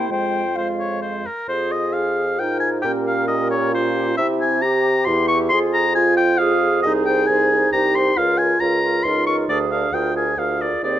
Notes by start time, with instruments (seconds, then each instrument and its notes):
Already playing: french horn A#3, clarinet E4, oboe C5
0.10 bassoon F2, french horn G#3, clarinet F4, oboe C5, flute G5
0.56 french horn G#3, clarinet F4, oboe C5, flute F5
0.79 oboe C#5
1.02 oboe C5
1.27 oboe A#4
1.49 bassoon F2, clarinet F4, flute G#4, oboe C5
1.72 oboe D#5
1.93 french horn G#4, oboe F5
2.39 bassoon G#2, clarinet D#4, french horn F4, flute A#4, oboe G5
2.60 oboe G#5
2.82 bassoon A#2, clarinet C#4, french horn G4, flute A#4, oboe G5
3.06 oboe F5
3.28 french horn G4, oboe D#5
3.51 oboe C#5
3.73 french horn F4, flute G4, oboe C5
4.17 bassoon C3, clarinet C4, french horn E4, flute G4, oboe E5
4.41 oboe G#5
4.62 french horn G4, clarinet G4, oboe A#5
5.05 bassoon E2, french horn E4, flute G4, oboe C6
5.28 oboe C#6
5.49 bassoon F2, clarinet F4, flute G#4, french horn G#4, oboe C6
5.74 oboe A#5
5.95 french horn F4, clarinet F4, oboe G#5
6.17 oboe G5
6.38 french horn F4, flute G#4, clarinet G#4, oboe F5
6.83 bassoon C2, clarinet D#4, french horn G#4, flute C5, oboe D#5
7.06 clarinet D#4, flute C5, oboe G5
7.27 bassoon C2, clarinet D#4, flute C5, oboe G#5
7.52 clarinet D#4, flute C5
7.73 bassoon C2, clarinet D#4, french horn G4, flute C5, oboe A#5
7.95 clarinet D#4, flute C5, oboe C6
8.17 bassoon C#2, french horn F4, clarinet F4, flute A#4, oboe F5
8.38 clarinet F4, flute A#4, oboe G#5
8.60 bassoon C#2, french horn F4, clarinet F4, flute A#4, oboe A#5
8.84 clarinet F4, flute A#4
9.03 bassoon C#2, french horn D#4, clarinet F4, flute A#4, oboe C6
9.27 clarinet F4, flute A#4, oboe C#6
9.48 bassoon D2, french horn D4, clarinet G#4, flute A#4, oboe D5
9.71 clarinet G#4, flute A#4, oboe F5
9.92 bassoon D2, french horn F4, clarinet G#4, flute A#4, oboe G5
10.15 clarinet G#4, flute A#4, oboe G#5
10.36 bassoon D2, french horn F4, clarinet G#4, flute A#4, oboe F5
10.59 clarinet G#4, flute A#4, oboe D5
10.83 bassoon D#2, french horn C4, clarinet G#4, flute C5, oboe D5